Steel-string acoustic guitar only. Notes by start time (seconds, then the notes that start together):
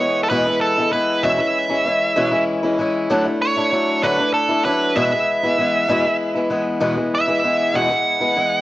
Already playing: E3
0.00 G#3 B3 E4
0.30 E2 B2 E3 G#3 B3 E4
0.45 E3 G#3 B3 E4
0.78 E3 G#3 B3 E4
0.92 E3 G#3 B3 E4
1.23 E2 B2 E3 G#3 C#4 E4
1.38 E3 G#3 C#4 E4
1.69 E3 G#3 C#4 E4
1.85 E3 G#3 C#4 E4
2.16 E2 B2 E3 G#3 C#4 E4
2.31 E3 G#3 C#4 E4
2.63 E3 G#3 C#4 E4
2.78 E3 G#3 C#4 E4
3.10 D3 F#3 A3 D4 E4
3.25 A3 D4 E4
3.57 A3 D4 E4
3.72 F#3 A3 D4 E4
4.03 D3 F#3 A3 D4 E4
4.18 A3 D4 E4
4.49 A3 D4 E4
4.65 F#3 A3 D4 E4
4.96 E2 B2 E3 G#3 B3 E4
5.11 E3 G#3 B3 E4
5.43 E3 G#3 B3 E4
5.58 E3 G#3 B3 E4
5.88 E2 B2 E3 G#3 B3 E4
6.05 E3 G#3 B3 E4
6.35 E3 G#3 B3 E4
6.50 E3 G#3 B3 E4
6.81 E2 B2 E3 G#3 B3 E4
6.96 E3 G#3 B3 E4
7.27 E3 G#3 B3 E4
7.43 E3 G#3 B3 E4
7.74 E2 B2 E3 G#3 B3 E4
7.89 E3 B3 E4
8.20 E3 G#3 B3 E4
8.36 E3 G#3 B3 E4